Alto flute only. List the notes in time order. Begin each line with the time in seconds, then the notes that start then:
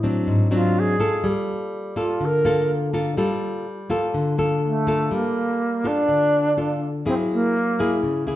0.54 F4
0.79 G#4
2.00 F4
2.25 A#4
4.66 A3
5.14 A#3
5.87 D4
7.08 C4
7.33 A#3